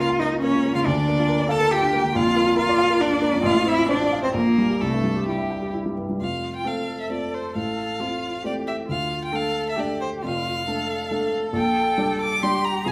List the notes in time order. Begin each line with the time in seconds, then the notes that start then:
Already playing: C#2 C#3 A#3 F4
0.00 F4 A#4 F5
0.10 F5
0.19 D#4 A#4 D#5
0.33 F4
0.41 A#3 C#4 C#5
0.55 F4
0.65 A#3
0.75 C#3 F4 F5
0.86 D2 D4 D5
0.97 D3
1.09 A#3
1.19 F4
1.29 A#4
1.40 D5
1.49 A4 F5 A5
1.60 A#4
1.71 F4 G4 G5
1.82 D4
1.93 A#3
2.04 D3
2.15 A#1 F4 F5
2.25 F2
2.36 A#3
2.47 F4
2.57 F4 A#4 F5
2.69 D5
2.78 F5
2.90 A#4
3.00 D4 F4 D5
3.11 D4
3.22 A#3
3.33 F2
3.43 A1 F4 F5
3.54 A2
3.66 C4 E4 E5
3.78 F4
3.88 D4 C5 D5
4.01 F4
4.13 F5
4.23 C4 C5
4.34 A#1 A#3 A#4
4.46 A#2
4.58 G3
4.70 G4
4.81 C2 A3 A4
4.93 G2
5.04 G3
5.16 G4
5.27 G3 E4 G4
5.38 E5
5.50 G5
5.62 G4
5.74 E4
5.86 G3
5.97 G2
6.09 G3
6.20 F1 F2 F4 F5
6.56 G5
6.65 A3 C4 F4 A4 F5
7.00 E5
7.10 A3 C4 F4 D5
7.34 C5
7.55 A1 A2 A4 F5
8.00 A3 C4 F4
8.44 A3 C4 F4 G4 D5
8.67 E5
8.89 D2 D3 F4 F5
9.25 G5
9.33 A3 D4 A4 F5
9.69 E5
9.76 A3 D4 G4 A4 D5
10.01 C5
10.23 F1 F2 F4 F5
10.68 A3 D4 A4
11.11 A3 D4 A4
11.53 A#1 A#2
11.57 G5
11.98 G3 D4 D5
12.21 D6
12.43 G3 D4 G4 D5 C6
12.64 A#5
12.85 B1 B2 G#4 G#5